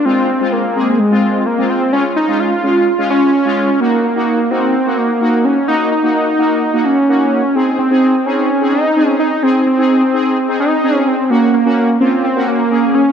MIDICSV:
0, 0, Header, 1, 3, 480
1, 0, Start_track
1, 0, Tempo, 468750
1, 53, Time_signature, 4, 2, 24, 8
1, 13435, End_track
2, 0, Start_track
2, 0, Title_t, "Analog polysynth"
2, 0, Program_c, 0, 90
2, 53, Note_on_c, 0, 56, 80
2, 53, Note_on_c, 0, 60, 74
2, 53, Note_on_c, 0, 65, 89
2, 307, Note_off_c, 0, 56, 0
2, 307, Note_off_c, 0, 60, 0
2, 307, Note_off_c, 0, 65, 0
2, 414, Note_on_c, 0, 56, 77
2, 414, Note_on_c, 0, 60, 72
2, 414, Note_on_c, 0, 65, 83
2, 667, Note_off_c, 0, 56, 0
2, 667, Note_off_c, 0, 60, 0
2, 667, Note_off_c, 0, 65, 0
2, 773, Note_on_c, 0, 56, 76
2, 773, Note_on_c, 0, 60, 70
2, 773, Note_on_c, 0, 68, 84
2, 1027, Note_off_c, 0, 56, 0
2, 1027, Note_off_c, 0, 60, 0
2, 1027, Note_off_c, 0, 68, 0
2, 1133, Note_on_c, 0, 56, 75
2, 1133, Note_on_c, 0, 60, 71
2, 1133, Note_on_c, 0, 65, 86
2, 1471, Note_off_c, 0, 56, 0
2, 1471, Note_off_c, 0, 60, 0
2, 1471, Note_off_c, 0, 65, 0
2, 1614, Note_on_c, 0, 60, 73
2, 1614, Note_on_c, 0, 65, 82
2, 1615, Note_on_c, 0, 56, 78
2, 1867, Note_off_c, 0, 60, 0
2, 1867, Note_off_c, 0, 65, 0
2, 1868, Note_off_c, 0, 56, 0
2, 1974, Note_on_c, 0, 61, 72
2, 1974, Note_on_c, 0, 65, 87
2, 1975, Note_on_c, 0, 56, 78
2, 2227, Note_off_c, 0, 61, 0
2, 2227, Note_off_c, 0, 65, 0
2, 2228, Note_off_c, 0, 56, 0
2, 2333, Note_on_c, 0, 56, 80
2, 2334, Note_on_c, 0, 61, 72
2, 2334, Note_on_c, 0, 65, 88
2, 2587, Note_off_c, 0, 56, 0
2, 2587, Note_off_c, 0, 61, 0
2, 2587, Note_off_c, 0, 65, 0
2, 2694, Note_on_c, 0, 61, 71
2, 2694, Note_on_c, 0, 65, 85
2, 2695, Note_on_c, 0, 56, 79
2, 2947, Note_off_c, 0, 61, 0
2, 2947, Note_off_c, 0, 65, 0
2, 2948, Note_off_c, 0, 56, 0
2, 3054, Note_on_c, 0, 56, 92
2, 3054, Note_on_c, 0, 61, 84
2, 3054, Note_on_c, 0, 65, 100
2, 3392, Note_off_c, 0, 56, 0
2, 3392, Note_off_c, 0, 61, 0
2, 3392, Note_off_c, 0, 65, 0
2, 3533, Note_on_c, 0, 65, 100
2, 3534, Note_on_c, 0, 56, 93
2, 3534, Note_on_c, 0, 61, 82
2, 3787, Note_off_c, 0, 56, 0
2, 3787, Note_off_c, 0, 61, 0
2, 3787, Note_off_c, 0, 65, 0
2, 3894, Note_on_c, 0, 58, 78
2, 3894, Note_on_c, 0, 63, 71
2, 3894, Note_on_c, 0, 66, 88
2, 4147, Note_off_c, 0, 58, 0
2, 4147, Note_off_c, 0, 63, 0
2, 4147, Note_off_c, 0, 66, 0
2, 4255, Note_on_c, 0, 58, 76
2, 4255, Note_on_c, 0, 63, 73
2, 4255, Note_on_c, 0, 66, 86
2, 4508, Note_off_c, 0, 58, 0
2, 4508, Note_off_c, 0, 63, 0
2, 4508, Note_off_c, 0, 66, 0
2, 4614, Note_on_c, 0, 58, 74
2, 4614, Note_on_c, 0, 63, 72
2, 4614, Note_on_c, 0, 66, 81
2, 4867, Note_off_c, 0, 58, 0
2, 4867, Note_off_c, 0, 63, 0
2, 4867, Note_off_c, 0, 66, 0
2, 4974, Note_on_c, 0, 58, 78
2, 4974, Note_on_c, 0, 63, 71
2, 4974, Note_on_c, 0, 66, 85
2, 5227, Note_off_c, 0, 66, 0
2, 5228, Note_off_c, 0, 58, 0
2, 5228, Note_off_c, 0, 63, 0
2, 5335, Note_on_c, 0, 58, 78
2, 5335, Note_on_c, 0, 63, 72
2, 5336, Note_on_c, 0, 66, 89
2, 5673, Note_off_c, 0, 58, 0
2, 5673, Note_off_c, 0, 63, 0
2, 5673, Note_off_c, 0, 66, 0
2, 5814, Note_on_c, 0, 58, 80
2, 5814, Note_on_c, 0, 63, 74
2, 5814, Note_on_c, 0, 66, 88
2, 6067, Note_off_c, 0, 58, 0
2, 6067, Note_off_c, 0, 63, 0
2, 6067, Note_off_c, 0, 66, 0
2, 6175, Note_on_c, 0, 58, 81
2, 6175, Note_on_c, 0, 63, 72
2, 6175, Note_on_c, 0, 66, 86
2, 6428, Note_off_c, 0, 58, 0
2, 6428, Note_off_c, 0, 63, 0
2, 6428, Note_off_c, 0, 66, 0
2, 6535, Note_on_c, 0, 58, 76
2, 6535, Note_on_c, 0, 63, 72
2, 6535, Note_on_c, 0, 66, 83
2, 6788, Note_off_c, 0, 58, 0
2, 6788, Note_off_c, 0, 63, 0
2, 6788, Note_off_c, 0, 66, 0
2, 6895, Note_on_c, 0, 58, 78
2, 6895, Note_on_c, 0, 66, 84
2, 6896, Note_on_c, 0, 63, 70
2, 7148, Note_off_c, 0, 58, 0
2, 7148, Note_off_c, 0, 63, 0
2, 7148, Note_off_c, 0, 66, 0
2, 7255, Note_on_c, 0, 63, 69
2, 7255, Note_on_c, 0, 66, 86
2, 7256, Note_on_c, 0, 58, 78
2, 7592, Note_off_c, 0, 63, 0
2, 7592, Note_off_c, 0, 66, 0
2, 7593, Note_off_c, 0, 58, 0
2, 7733, Note_on_c, 0, 63, 74
2, 7733, Note_on_c, 0, 68, 86
2, 7734, Note_on_c, 0, 60, 80
2, 7987, Note_off_c, 0, 60, 0
2, 7987, Note_off_c, 0, 63, 0
2, 7987, Note_off_c, 0, 68, 0
2, 8093, Note_on_c, 0, 60, 78
2, 8093, Note_on_c, 0, 68, 89
2, 8094, Note_on_c, 0, 63, 73
2, 8347, Note_off_c, 0, 60, 0
2, 8347, Note_off_c, 0, 63, 0
2, 8347, Note_off_c, 0, 68, 0
2, 8454, Note_on_c, 0, 60, 77
2, 8454, Note_on_c, 0, 63, 68
2, 8455, Note_on_c, 0, 68, 83
2, 8707, Note_off_c, 0, 60, 0
2, 8707, Note_off_c, 0, 63, 0
2, 8708, Note_off_c, 0, 68, 0
2, 8815, Note_on_c, 0, 60, 80
2, 8815, Note_on_c, 0, 63, 69
2, 8815, Note_on_c, 0, 68, 86
2, 9068, Note_off_c, 0, 60, 0
2, 9068, Note_off_c, 0, 63, 0
2, 9068, Note_off_c, 0, 68, 0
2, 9174, Note_on_c, 0, 60, 78
2, 9174, Note_on_c, 0, 63, 73
2, 9175, Note_on_c, 0, 68, 85
2, 9512, Note_off_c, 0, 60, 0
2, 9512, Note_off_c, 0, 63, 0
2, 9512, Note_off_c, 0, 68, 0
2, 9654, Note_on_c, 0, 63, 72
2, 9654, Note_on_c, 0, 68, 88
2, 9655, Note_on_c, 0, 60, 79
2, 9908, Note_off_c, 0, 60, 0
2, 9908, Note_off_c, 0, 63, 0
2, 9908, Note_off_c, 0, 68, 0
2, 10012, Note_on_c, 0, 60, 82
2, 10012, Note_on_c, 0, 63, 73
2, 10013, Note_on_c, 0, 68, 88
2, 10266, Note_off_c, 0, 63, 0
2, 10267, Note_off_c, 0, 60, 0
2, 10267, Note_off_c, 0, 68, 0
2, 10375, Note_on_c, 0, 63, 70
2, 10375, Note_on_c, 0, 68, 86
2, 10376, Note_on_c, 0, 60, 76
2, 10628, Note_off_c, 0, 60, 0
2, 10628, Note_off_c, 0, 63, 0
2, 10628, Note_off_c, 0, 68, 0
2, 10734, Note_on_c, 0, 60, 76
2, 10734, Note_on_c, 0, 63, 73
2, 10734, Note_on_c, 0, 68, 84
2, 10987, Note_off_c, 0, 63, 0
2, 10987, Note_off_c, 0, 68, 0
2, 10988, Note_off_c, 0, 60, 0
2, 11094, Note_on_c, 0, 60, 78
2, 11094, Note_on_c, 0, 63, 74
2, 11094, Note_on_c, 0, 68, 88
2, 11432, Note_off_c, 0, 60, 0
2, 11432, Note_off_c, 0, 63, 0
2, 11432, Note_off_c, 0, 68, 0
2, 11573, Note_on_c, 0, 58, 77
2, 11573, Note_on_c, 0, 61, 71
2, 11573, Note_on_c, 0, 66, 87
2, 11827, Note_off_c, 0, 58, 0
2, 11827, Note_off_c, 0, 61, 0
2, 11827, Note_off_c, 0, 66, 0
2, 11933, Note_on_c, 0, 58, 78
2, 11933, Note_on_c, 0, 61, 74
2, 11933, Note_on_c, 0, 66, 86
2, 12187, Note_off_c, 0, 58, 0
2, 12187, Note_off_c, 0, 61, 0
2, 12187, Note_off_c, 0, 66, 0
2, 12293, Note_on_c, 0, 58, 77
2, 12293, Note_on_c, 0, 61, 69
2, 12293, Note_on_c, 0, 65, 83
2, 12547, Note_off_c, 0, 58, 0
2, 12547, Note_off_c, 0, 61, 0
2, 12547, Note_off_c, 0, 65, 0
2, 12653, Note_on_c, 0, 58, 81
2, 12654, Note_on_c, 0, 61, 69
2, 12654, Note_on_c, 0, 66, 88
2, 12907, Note_off_c, 0, 58, 0
2, 12907, Note_off_c, 0, 61, 0
2, 12907, Note_off_c, 0, 66, 0
2, 13013, Note_on_c, 0, 58, 80
2, 13013, Note_on_c, 0, 61, 70
2, 13013, Note_on_c, 0, 68, 83
2, 13351, Note_off_c, 0, 58, 0
2, 13351, Note_off_c, 0, 61, 0
2, 13351, Note_off_c, 0, 68, 0
2, 13435, End_track
3, 0, Start_track
3, 0, Title_t, "Analog synth lead"
3, 0, Program_c, 1, 81
3, 52, Note_on_c, 1, 60, 105
3, 535, Note_on_c, 1, 58, 97
3, 550, Note_off_c, 1, 60, 0
3, 1014, Note_on_c, 1, 56, 97
3, 1029, Note_off_c, 1, 58, 0
3, 1494, Note_on_c, 1, 58, 99
3, 1509, Note_off_c, 1, 56, 0
3, 1735, Note_on_c, 1, 60, 99
3, 1751, Note_off_c, 1, 58, 0
3, 1967, Note_off_c, 1, 60, 0
3, 1973, Note_on_c, 1, 61, 105
3, 2081, Note_off_c, 1, 61, 0
3, 2214, Note_on_c, 1, 63, 105
3, 2456, Note_on_c, 1, 65, 101
3, 2471, Note_off_c, 1, 63, 0
3, 3174, Note_off_c, 1, 65, 0
3, 3178, Note_on_c, 1, 61, 101
3, 3895, Note_on_c, 1, 58, 94
3, 3911, Note_off_c, 1, 61, 0
3, 4128, Note_off_c, 1, 58, 0
3, 4134, Note_on_c, 1, 58, 93
3, 4614, Note_on_c, 1, 60, 99
3, 4629, Note_off_c, 1, 58, 0
3, 5093, Note_on_c, 1, 58, 97
3, 5109, Note_off_c, 1, 60, 0
3, 5575, Note_on_c, 1, 61, 92
3, 5591, Note_off_c, 1, 58, 0
3, 5810, Note_off_c, 1, 61, 0
3, 5816, Note_on_c, 1, 63, 104
3, 6038, Note_off_c, 1, 63, 0
3, 6056, Note_on_c, 1, 63, 106
3, 7014, Note_on_c, 1, 61, 102
3, 7029, Note_off_c, 1, 63, 0
3, 7736, Note_on_c, 1, 60, 97
3, 7751, Note_off_c, 1, 61, 0
3, 7968, Note_off_c, 1, 60, 0
3, 7974, Note_on_c, 1, 60, 97
3, 8455, Note_on_c, 1, 61, 103
3, 8471, Note_off_c, 1, 60, 0
3, 8928, Note_off_c, 1, 61, 0
3, 8934, Note_on_c, 1, 63, 111
3, 9380, Note_off_c, 1, 63, 0
3, 9415, Note_on_c, 1, 63, 98
3, 9654, Note_on_c, 1, 60, 99
3, 9670, Note_off_c, 1, 63, 0
3, 9891, Note_off_c, 1, 60, 0
3, 9897, Note_on_c, 1, 60, 105
3, 10814, Note_off_c, 1, 60, 0
3, 10854, Note_on_c, 1, 63, 112
3, 11223, Note_off_c, 1, 63, 0
3, 11223, Note_on_c, 1, 61, 112
3, 11334, Note_on_c, 1, 60, 99
3, 11349, Note_off_c, 1, 61, 0
3, 11574, Note_on_c, 1, 58, 97
3, 11589, Note_off_c, 1, 60, 0
3, 11807, Note_off_c, 1, 58, 0
3, 11813, Note_on_c, 1, 58, 95
3, 12259, Note_off_c, 1, 58, 0
3, 12294, Note_on_c, 1, 60, 98
3, 12516, Note_off_c, 1, 60, 0
3, 12534, Note_on_c, 1, 60, 100
3, 12757, Note_off_c, 1, 60, 0
3, 12774, Note_on_c, 1, 58, 105
3, 13253, Note_on_c, 1, 61, 101
3, 13269, Note_off_c, 1, 58, 0
3, 13435, Note_off_c, 1, 61, 0
3, 13435, End_track
0, 0, End_of_file